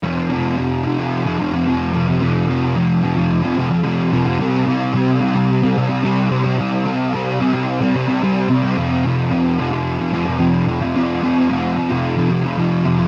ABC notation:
X:1
M:4/4
L:1/16
Q:1/4=110
K:Cmix
V:1 name="Distorted electric guitar" clef=bass
[F,,C,F,]2 [F,,C,F,]2 [F,,C,F,]2 [F,,C,F,] [C,F,]2 [C,F,] [F,,C,F,] [C,F,] [F,,C,F,]2 [F,,C,F,] [C,F,] | [F,,C,F,]2 [F,,C,F,]2 [F,,C,F,]2 [F,,C,F,] [C,F,]2 [C,F,] [F,,C,F,] [C,F,] [F,,C,F,]2 [F,,C,F,] [C,F,] | [C,G,C]2 [C,G,C]2 [C,G,C]2 [C,G,C] [G,C]2 [G,C] [C,G,C] [G,C] [C,G,C]2 [C,G,C] [G,C] | [C,G,C]2 [C,G,C]2 [C,G,C]2 [C,G,C] [G,C]2 [G,C] [C,G,C] [G,C] [C,G,C]2 [C,G,C] [G,C] |
[F,,C,F,]2 [F,,C,F,]2 [F,,C,F,]2 [F,,C,F,] [C,F,]2 [C,F,] [F,,C,F,] [C,F,] [F,,C,F,]2 [F,,C,F,] [C,F,] | [F,,C,F,]2 [F,,C,F,]2 [F,,C,F,]2 [F,,C,F,] [C,F,]2 [C,F,] [F,,C,F,] [C,F,] [F,,C,F,]2 [F,,C,F,] [C,F,] |]